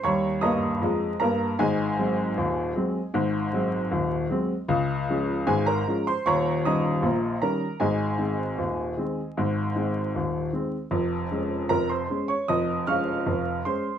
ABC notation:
X:1
M:2/4
L:1/16
Q:1/4=77
K:Db
V:1 name="Upright piano"
[dbd']2 [ebe']4 [Bb]2 | [Aea]8- | [Aea]8 | z4 [Aa] [Bb]2 [cc'] |
[dbd']2 [ebe']4 [Bb]2 | [Aea]8- | [Aea]4 z4 | z4 [Bb] [cc']2 [dd'] |
[ee']2 [fd'f']4 [cc']2 |]
V:2 name="Upright piano" clef=bass
[E,,=G,]2 [=G,,B,]2 [F,,A,]2 [G,,B,]2 | [A,,,A,,]2 [G,A,C]2 [E,,,E,,]2 [G,A,C]2 | [A,,,A,,]2 [G,A,C]2 [E,,,E,,]2 [G,A,C]2 | [D,,D,]2 [F,A,D]2 [A,,,A,,]2 [F,A,D]2 |
[E,,,E,,]2 [E,=G,D]2 [B,,,B,,]2 [E,G,D]2 | [A,,,A,,]2 [E,A,C]2 [E,,,E,,]2 [E,A,C]2 | [A,,,A,,]2 [E,A,C]2 [E,,,E,,]2 [E,A,C]2 | [F,,,F,,]2 [A,D]2 [F,,,F,,]2 [A,D]2 |
[F,,,F,,]2 [A,D]2 [F,,,F,,]2 [A,D]2 |]